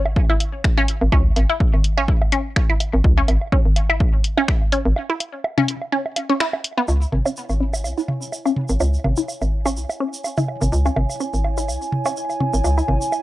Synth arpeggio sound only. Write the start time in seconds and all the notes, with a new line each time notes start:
0.30 E4
0.78 C#4
1.12 C#4
1.50 E4
1.98 C#4
2.32 C#4
2.70 E4
3.18 C#4
3.52 C#4
3.90 E4
4.38 C#4
4.72 C#4
5.10 E4
5.58 C#4
5.92 C#4
6.29 C#4
6.40 E4
6.78 B3
7.26 C#4
7.60 C#4
7.98 E4
8.46 C#4
8.80 C#4
9.18 E4
9.66 C#4
10.00 C#4
10.38 E4
10.86 C#4
11.20 C#4
11.58 E4
12.06 C#4
12.40 C#4
12.78 E4